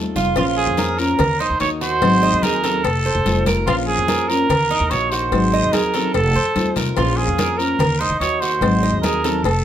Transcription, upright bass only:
Already playing: D#2
0.16 F1
0.36 A#1
0.67 F2
1.19 D#2
1.50 D#2
1.61 D#2
2.02 G#1
2.33 D#2
2.84 F1
3.15 F1
3.25 F1
3.67 A#1
3.98 F2
4.49 D#2
4.80 D#2
4.91 A#1
5.32 G#1
5.64 D#2
6.14 F1
6.35 F2
6.56 D#2
6.76 C2
6.97 A#1
7.28 F2
7.79 D#2
8.10 D#2
8.20 D#2
8.61 G#1
8.93 D#2
9.44 F1

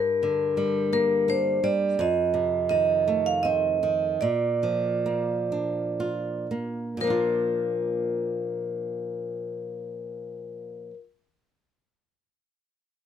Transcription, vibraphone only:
Already playing: A#4
0.93 A#4
1.30 C5
1.64 D5
2.01 D#5
2.69 D#5
3.26 F5
3.43 D#5
4.21 D5
7.01 A#4

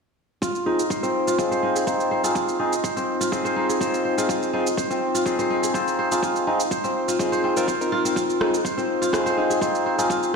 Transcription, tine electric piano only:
0.66 C4 D#4 F4 G#4
1.03 C4 D#4 F4 C5
1.39 C4 D#4 F4 G#4
1.87 C4 D#4 F4 C5
2.24 C4 D#4 F4 G#4
2.60 C4 D#4 F4 G#4
2.97 C4 D#4 F4 C5
3.32 C4 D#4 F4 G#4
3.81 C4 D#4 F4 C5
4.18 C4 D#4 F4 G#4
4.53 C4 D#4 F4 G#4
4.90 C4 D#4 F4 C5
5.26 C4 D#4 F4 G#4
5.74 C4 D#4 F4 C5
6.12 C4 D#4 F4 G#4
6.47 C4 D#4 F4 G#4
6.84 C4 D#4 F4 C5
7.20 C4 D#4 F4 G#4
7.57 C4 D#4 F4 A#4
7.81 C4 D#4 F4 A#4
8.41 C4 D#4 F4 G#4
8.77 C4 D#4 F4 C5
9.13 C4 D#4 F4 G#4
9.62 C4 D#4 F4 C5
9.98 C4 D#4 F4 G#4

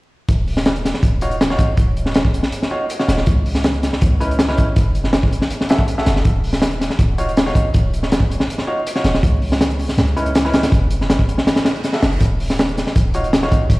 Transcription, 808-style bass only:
0.29 D#1
1.03 D#1
1.77 D#1
3.08 D#1
3.27 C#2
4.02 C#2
4.77 F#1
6.07 F#1
6.25 D#1
6.99 D#1
7.75 D#1
9.04 D#1
9.23 C#2
9.98 C#2
10.72 F#1
12.03 F#1
12.21 D#1
12.96 D#1
13.70 D#1

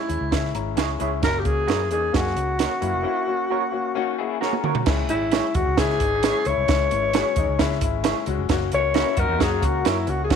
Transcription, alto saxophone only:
Already playing: E4
1.24 A#4
1.39 G4
1.45 G#4
1.92 G#4
2.15 F#4
5.10 E4
5.55 F#4
5.78 G#4
6.47 C#5
8.74 C#5
9.19 A#4
9.41 G#4
9.64 F#4
9.87 E4
10.10 F#4
10.24 G#4
10.31 F#4

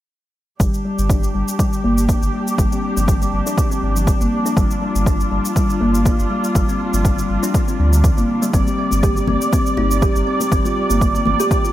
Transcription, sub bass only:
0.60 G1
0.99 G1
1.35 G1
1.84 G1
2.23 G1
2.58 G1
2.97 G1
3.33 G1
3.83 G1
4.21 G1
4.57 G1
4.95 G1
5.31 G1
5.81 G1
6.19 G1
6.55 G1
6.94 G1
7.30 G1
7.79 D2
8.18 G1
8.54 G1
8.92 G1
9.28 G1
9.78 G1
10.16 G1
10.52 G1
10.90 G1
11.26 G1

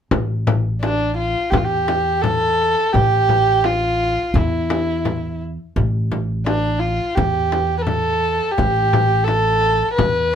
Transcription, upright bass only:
0.11 A1
1.52 E2
2.94 A1
4.34 E2
5.76 A1
7.17 E2
8.59 A1
9.99 E2

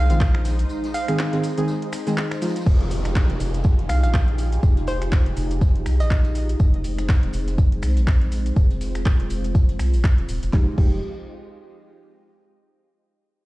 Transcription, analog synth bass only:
Already playing: C2
0.10 A#1
2.66 F1
3.30 F1
3.40 F1
3.89 C2
4.03 A#1
4.63 F1
5.26 F1
5.37 F1
5.86 C2
6.00 A#1
6.60 F1
7.23 F1
7.34 F1
7.83 C2
7.97 A#1
8.56 F1
9.20 F1
9.30 F1
9.79 C2
9.94 A#1
10.18 F1
10.29 D#1
10.43 F1
10.53 F1
10.78 F1

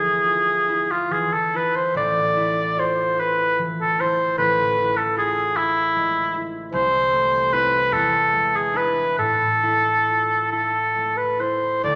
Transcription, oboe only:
Already playing: G#4
0.91 F4
1.12 G#4
1.33 A4
1.56 B4
1.76 C5
1.97 D5
2.79 C5
3.20 B4
3.81 A4
4.00 C5
4.38 B4
4.96 A4
5.18 G#4
5.57 E4
6.73 C5
7.53 B4
7.92 A4
8.56 G#4
8.76 B4
9.19 A4
10.51 A4
11.17 B4
11.40 C5
11.84 D5

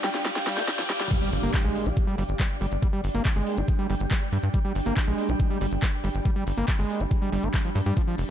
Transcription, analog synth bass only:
1.32 G1
1.43 G1
1.65 A#1
1.86 A#1
2.18 G1
2.29 G1
2.61 G1
2.72 G1
3.04 G1
3.15 G1
3.36 G1
3.57 G1
3.90 G1
4.00 G1
4.32 G2
4.43 G2
4.75 G1
4.86 G1
5.07 A#1
5.29 A#1
5.61 G1
5.72 G1
6.04 G1
6.15 G1
6.47 G1
6.57 G1
6.79 G1
7.00 G1
7.32 G1
7.43 G1
7.75 G2
7.86 G2
8.18 F1

